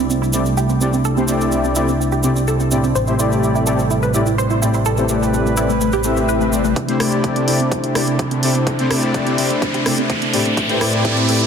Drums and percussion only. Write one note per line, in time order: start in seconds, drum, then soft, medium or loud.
0.10 cabasa soft
0.23 cabasa soft
0.33 cabasa medium
0.46 cabasa soft
0.57 cabasa medium
0.69 cabasa soft
0.81 cabasa medium
0.93 cabasa soft
1.05 cabasa soft
1.17 cabasa soft
1.28 cabasa medium
1.41 cabasa soft
1.52 cabasa soft
1.64 cabasa soft
1.75 cabasa medium
1.88 cabasa soft
2.01 cabasa soft
2.12 cabasa soft
2.23 cabasa medium
2.36 cabasa soft
2.48 cabasa soft
2.60 cabasa soft
2.71 cabasa medium
2.84 cabasa soft
2.96 cabasa soft
3.07 cabasa soft
3.19 cabasa medium
3.32 cabasa soft
3.43 cabasa soft
3.55 cabasa soft
3.67 cabasa medium
3.79 cabasa soft
3.90 cabasa medium
4.03 cabasa soft
4.14 cabasa medium
4.26 cabasa soft
4.39 cabasa soft
4.50 cabasa soft
4.63 cabasa medium
4.74 cabasa soft
4.85 cabasa medium
4.97 cabasa soft
5.09 cabasa medium
5.23 cabasa soft
5.34 cabasa soft
5.46 cabasa soft
5.57 cabasa medium
5.70 cabasa soft
5.81 cabasa medium
5.92 cabasa soft
6.04 cabasa medium
6.17 cabasa soft
6.29 cabasa soft
6.41 cabasa soft
6.53 cabasa medium
6.65 cabasa soft
6.76 kick loud
6.76 closed hi-hat medium
6.89 closed hi-hat soft
7.00 cross-stick medium
7.00 open hi-hat loud
7.12 closed hi-hat soft
7.24 kick loud
7.24 closed hi-hat medium
7.36 closed hi-hat soft
7.48 open hi-hat medium
7.60 closed hi-hat soft
7.72 kick loud
7.72 closed hi-hat medium
7.84 closed hi-hat soft
7.95 cross-stick medium
7.95 open hi-hat loud
8.07 closed hi-hat soft
8.19 kick loud
8.19 closed hi-hat medium
8.31 closed hi-hat soft
8.43 open hi-hat medium
8.55 closed hi-hat soft
8.67 kick loud
8.67 closed hi-hat medium
8.79 closed hi-hat soft
8.91 cross-stick medium
8.91 open hi-hat loud
9.03 closed hi-hat soft
9.14 kick loud
9.14 closed hi-hat medium
9.27 closed hi-hat soft
9.38 open hi-hat medium
9.50 closed hi-hat soft
9.62 kick loud
9.62 closed hi-hat medium
9.74 closed hi-hat soft
9.86 cross-stick medium
9.86 open hi-hat loud
9.98 closed hi-hat soft
10.10 kick loud
10.10 closed hi-hat medium
10.22 closed hi-hat soft
10.34 open hi-hat medium
10.46 closed hi-hat soft
10.57 kick loud
10.57 closed hi-hat medium
10.69 closed hi-hat soft
10.81 cross-stick medium
10.81 open hi-hat loud
10.93 closed hi-hat soft
11.05 kick loud
11.05 closed hi-hat medium
11.17 closed hi-hat soft
11.29 open hi-hat loud
11.41 closed hi-hat soft